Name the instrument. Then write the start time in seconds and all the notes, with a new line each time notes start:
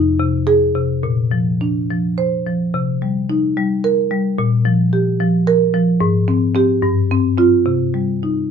marimba
Already playing: F2 D#4
0.20 C3
0.47 G#4
0.75 C3
1.03 A#2
1.31 F3
1.61 D4
1.90 F3
2.18 C5
2.47 F3
2.74 C3
3.02 G3
3.30 D#4
3.57 G3
3.84 A#4
4.11 G3
4.38 A#2
4.65 F3
4.93 G4
5.20 F3
5.47 A#4
5.74 F3
6.01 G#2
6.28 C4
6.55 C4 G4
6.82 G2
7.11 C4
7.38 C4 F4
7.66 C3
7.94 G3
8.23 D#4